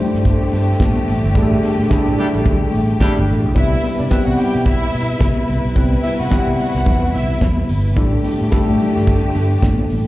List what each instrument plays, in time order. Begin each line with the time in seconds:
Already playing: string section D3 A3 G4, tine electric piano G3 A3 D4 E4 A4 C5
0.14 fingered electric bass G2, snare
0.25 kick, closed hi-hat, muted conga
0.52 fingered electric bass G2, open hi-hat, muted conga
0.80 fingered electric bass A2, kick, snare, closed hi-hat, high conga
0.96 high conga
1.08 fingered electric bass A1, open hi-hat
1.24 fingered electric bass G1
1.34 fingered electric bass A1, tine electric piano G3 A3 D4 E4 G#4, kick, closed hi-hat
1.42 tine electric piano A4
1.63 open hi-hat, muted conga
1.79 fingered electric bass A2
1.89 tine electric piano G3 A3 D4 E4 G#4, kick, snare, closed hi-hat, high conga
1.97 tine electric piano A4
2.07 fingered electric bass A2
2.18 horn section G3 D4 E4 G4, open hi-hat, muted conga, low conga
2.35 fingered electric bass A1
2.46 fingered electric bass D2, kick, closed hi-hat, muted conga, low conga
2.72 fingered electric bass A1, open hi-hat, muted conga
3.00 horn section G3 D4 E4 G4, kick, snare, closed hi-hat, high conga
3.16 fingered electric bass G1, high conga
3.28 fingered electric bass A1, open hi-hat
3.45 fingered electric bass B1
3.55 fingered electric bass C2, string section C3 E4 B4, tine electric piano G3 B3 C4 E4 B4, violin section E4 E5, kick, closed hi-hat
3.84 open hi-hat, muted conga
3.98 fingered electric bass C3, violin section D4 D5
4.10 tine electric piano G3 B3 C4 E4 B4, violin section E4 E5, muted fingered electric bass stroke, kick, snare, closed hi-hat, high conga
4.26 fingered electric bass C3, violin section F#4 F#5
4.38 violin section G4 G5, open hi-hat, muted conga, low conga
4.55 fingered electric bass B2, snare
4.66 violin section E4 E5, kick, closed hi-hat, muted conga
4.92 fingered electric bass B2, open hi-hat, muted conga
5.19 fingered electric bass C3, kick, snare, closed hi-hat, high conga
5.36 high conga
5.48 fingered electric bass C2, open hi-hat
5.65 fingered electric bass B1
5.75 fingered electric bass C2, tine electric piano G3 B3 C4 E4 B4, kick, closed hi-hat
6.03 violin section E4 E5, open hi-hat, muted conga
6.19 fingered electric bass C3, violin section F#4 F#5
6.30 tine electric piano G3 B3 C4 E4 B4, muted fingered electric bass stroke, kick, snare, closed hi-hat, high conga
6.47 fingered electric bass C3
6.57 violin section F#4 F#5, open hi-hat, muted conga
6.74 fingered electric bass C2, snare
6.86 fingered electric bass E2, kick, closed hi-hat, muted conga, low conga
7.13 fingered electric bass C2, violin section E4 E5, open hi-hat, muted conga
7.41 fingered electric bass E2, kick, snare, closed hi-hat, high conga
7.57 high conga
7.69 fingered electric bass G1, open hi-hat
7.96 fingered electric bass A1, string section D3 A3 G4, tine electric piano G3 A3 D4 E4 A4, kick, closed hi-hat
8.24 open hi-hat, muted conga
8.41 fingered electric bass A2
8.51 tine electric piano G3 A3 D4 E4 A4, kick, snare, closed hi-hat, high conga
8.69 fingered electric bass A2
8.80 open hi-hat, low conga
8.96 fingered electric bass G2, snare
9.07 kick, closed hi-hat, muted conga
9.35 fingered electric bass G2, open hi-hat, muted conga
9.62 fingered electric bass A2, kick, snare, closed hi-hat, high conga
9.78 high conga
9.90 fingered electric bass A1, open hi-hat